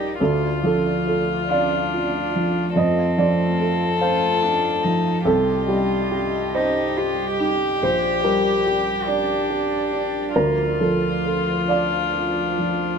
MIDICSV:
0, 0, Header, 1, 5, 480
1, 0, Start_track
1, 0, Tempo, 864553
1, 110, Time_signature, 6, 3, 24, 8
1, 1072, Tempo, 832178
1, 2992, Tempo, 848656
1, 5872, Tempo, 890208
1, 7292, End_track
2, 0, Start_track
2, 0, Title_t, "Upright piano"
2, 0, Program_c, 0, 0
2, 0, Control_c, 0, 64, 127
2, 0, Note_on_c, 0, 34, 33
2, 0, Note_on_c, 0, 55, 27
2, 0, Note_on_c, 0, 67, 30
2, 0, Note_on_c, 0, 70, 45
2, 0, Note_on_c, 0, 72, 42
2, 0, Note_on_c, 0, 74, 26
2, 91, Note_off_c, 0, 70, 0
2, 93, Note_off_c, 0, 34, 0
2, 112, Note_off_c, 0, 74, 0
2, 113, Note_on_c, 0, 69, 46
2, 117, Note_on_c, 0, 38, 38
2, 121, Control_c, 0, 64, 0
2, 122, Note_off_c, 0, 55, 0
2, 123, Note_off_c, 0, 67, 0
2, 123, Note_off_c, 0, 72, 0
2, 231, Control_c, 0, 64, 127
2, 335, Note_off_c, 0, 69, 0
2, 351, Note_on_c, 0, 53, 30
2, 359, Note_on_c, 0, 69, 50
2, 586, Note_off_c, 0, 69, 0
2, 594, Note_on_c, 0, 69, 33
2, 741, Note_off_c, 0, 53, 0
2, 838, Note_on_c, 0, 77, 35
2, 842, Note_on_c, 0, 74, 54
2, 979, Note_off_c, 0, 69, 0
2, 1074, Note_on_c, 0, 65, 34
2, 1216, Note_off_c, 0, 77, 0
2, 1315, Note_on_c, 0, 53, 30
2, 1456, Note_off_c, 0, 65, 0
2, 1530, Note_off_c, 0, 38, 0
2, 1530, Note_off_c, 0, 74, 0
2, 1549, Note_on_c, 0, 41, 41
2, 1552, Note_off_c, 0, 53, 0
2, 1556, Note_on_c, 0, 75, 59
2, 1559, Control_c, 0, 64, 0
2, 1666, Control_c, 0, 64, 127
2, 1776, Note_off_c, 0, 75, 0
2, 1792, Note_on_c, 0, 53, 37
2, 1794, Note_on_c, 0, 74, 58
2, 2035, Note_on_c, 0, 69, 36
2, 2176, Note_off_c, 0, 53, 0
2, 2251, Note_off_c, 0, 74, 0
2, 2273, Note_on_c, 0, 72, 56
2, 2273, Note_on_c, 0, 77, 38
2, 2418, Note_off_c, 0, 69, 0
2, 2509, Note_on_c, 0, 65, 37
2, 2656, Note_off_c, 0, 77, 0
2, 2752, Note_on_c, 0, 53, 34
2, 2894, Note_off_c, 0, 65, 0
2, 2968, Note_off_c, 0, 41, 0
2, 2969, Note_off_c, 0, 72, 0
2, 2987, Note_on_c, 0, 36, 45
2, 2989, Note_on_c, 0, 69, 66
2, 2992, Note_off_c, 0, 53, 0
2, 3002, Control_c, 0, 64, 0
2, 3109, Control_c, 0, 64, 127
2, 3213, Note_off_c, 0, 69, 0
2, 3230, Note_on_c, 0, 55, 38
2, 3231, Note_on_c, 0, 67, 46
2, 3468, Note_off_c, 0, 67, 0
2, 3476, Note_on_c, 0, 67, 36
2, 3623, Note_off_c, 0, 55, 0
2, 3719, Note_on_c, 0, 72, 55
2, 3721, Note_on_c, 0, 75, 38
2, 3867, Note_off_c, 0, 67, 0
2, 3963, Note_on_c, 0, 67, 38
2, 4107, Note_off_c, 0, 75, 0
2, 4203, Note_on_c, 0, 63, 33
2, 4344, Note_off_c, 0, 67, 0
2, 4413, Note_off_c, 0, 36, 0
2, 4415, Note_off_c, 0, 72, 0
2, 4439, Note_off_c, 0, 63, 0
2, 4444, Note_on_c, 0, 34, 42
2, 4446, Note_on_c, 0, 72, 68
2, 4449, Control_c, 0, 64, 0
2, 4527, Control_c, 0, 64, 127
2, 4662, Note_off_c, 0, 72, 0
2, 4679, Note_on_c, 0, 70, 47
2, 4680, Note_on_c, 0, 55, 36
2, 4919, Note_on_c, 0, 67, 35
2, 5057, Note_off_c, 0, 55, 0
2, 5129, Note_off_c, 0, 70, 0
2, 5151, Note_on_c, 0, 74, 38
2, 5297, Note_off_c, 0, 67, 0
2, 5393, Note_on_c, 0, 67, 37
2, 5533, Note_off_c, 0, 74, 0
2, 5630, Note_on_c, 0, 62, 32
2, 5775, Note_off_c, 0, 67, 0
2, 5850, Note_off_c, 0, 34, 0
2, 5872, Note_off_c, 0, 62, 0
2, 5876, Note_on_c, 0, 38, 41
2, 5876, Note_on_c, 0, 70, 58
2, 5880, Control_c, 0, 64, 0
2, 5964, Control_c, 0, 64, 127
2, 6093, Note_off_c, 0, 70, 0
2, 6110, Note_on_c, 0, 69, 41
2, 6117, Note_on_c, 0, 53, 32
2, 6350, Note_off_c, 0, 69, 0
2, 6358, Note_on_c, 0, 69, 29
2, 6501, Note_off_c, 0, 53, 0
2, 6590, Note_on_c, 0, 74, 50
2, 6599, Note_on_c, 0, 77, 30
2, 6741, Note_off_c, 0, 69, 0
2, 6835, Note_on_c, 0, 65, 28
2, 6979, Note_off_c, 0, 77, 0
2, 7077, Note_on_c, 0, 53, 25
2, 7216, Note_off_c, 0, 65, 0
2, 7288, Note_off_c, 0, 74, 0
2, 7292, Note_off_c, 0, 38, 0
2, 7292, Note_off_c, 0, 53, 0
2, 7292, End_track
3, 0, Start_track
3, 0, Title_t, "Violin"
3, 0, Program_c, 1, 40
3, 0, Note_on_c, 1, 67, 39
3, 86, Note_off_c, 1, 67, 0
3, 111, Note_on_c, 1, 65, 43
3, 1527, Note_off_c, 1, 65, 0
3, 1548, Note_on_c, 1, 69, 48
3, 2968, Note_off_c, 1, 69, 0
3, 2991, Note_on_c, 1, 67, 52
3, 5847, Note_off_c, 1, 67, 0
3, 5869, Note_on_c, 1, 65, 46
3, 7289, Note_off_c, 1, 65, 0
3, 7292, End_track
4, 0, Start_track
4, 0, Title_t, "Analog synth pad"
4, 0, Program_c, 2, 89
4, 0, Note_on_c, 2, 55, 47
4, 0, Note_on_c, 2, 67, 45
4, 0, Note_on_c, 2, 74, 47
4, 90, Note_off_c, 2, 67, 0
4, 94, Note_off_c, 2, 55, 0
4, 107, Note_on_c, 2, 65, 47
4, 111, Note_on_c, 2, 57, 49
4, 1549, Note_on_c, 2, 77, 51
4, 1554, Note_off_c, 2, 74, 0
4, 2981, Note_on_c, 2, 55, 51
4, 2984, Note_on_c, 2, 67, 54
4, 2986, Note_on_c, 2, 75, 52
4, 2990, Note_off_c, 2, 65, 0
4, 2991, Note_off_c, 2, 77, 0
4, 2992, Note_off_c, 2, 57, 0
4, 4436, Note_off_c, 2, 75, 0
4, 4441, Note_on_c, 2, 74, 52
4, 5865, Note_off_c, 2, 55, 0
4, 5866, Note_off_c, 2, 67, 0
4, 5878, Note_on_c, 2, 53, 51
4, 5880, Note_on_c, 2, 65, 52
4, 7292, Note_off_c, 2, 53, 0
4, 7292, Note_off_c, 2, 65, 0
4, 7292, Note_off_c, 2, 74, 0
4, 7292, End_track
5, 0, Start_track
5, 0, Title_t, "Cello"
5, 0, Program_c, 3, 42
5, 0, Note_on_c, 3, 63, 39
5, 107, Note_off_c, 3, 63, 0
5, 116, Note_on_c, 3, 65, 46
5, 827, Note_on_c, 3, 62, 47
5, 835, Note_off_c, 3, 65, 0
5, 1545, Note_off_c, 3, 62, 0
5, 1550, Note_on_c, 3, 60, 49
5, 2257, Note_off_c, 3, 60, 0
5, 2269, Note_on_c, 3, 65, 48
5, 2511, Note_on_c, 3, 62, 51
5, 2520, Note_off_c, 3, 65, 0
5, 2748, Note_on_c, 3, 63, 41
5, 2756, Note_off_c, 3, 62, 0
5, 2988, Note_off_c, 3, 63, 0
5, 2991, Note_on_c, 3, 65, 56
5, 3722, Note_on_c, 3, 63, 49
5, 3731, Note_off_c, 3, 65, 0
5, 3963, Note_on_c, 3, 65, 53
5, 3972, Note_off_c, 3, 63, 0
5, 4191, Note_off_c, 3, 65, 0
5, 4194, Note_on_c, 3, 67, 56
5, 5150, Note_on_c, 3, 62, 51
5, 5159, Note_off_c, 3, 67, 0
5, 5871, Note_on_c, 3, 65, 51
5, 5879, Note_off_c, 3, 62, 0
5, 6592, Note_off_c, 3, 65, 0
5, 6600, Note_on_c, 3, 62, 44
5, 7292, Note_off_c, 3, 62, 0
5, 7292, End_track
0, 0, End_of_file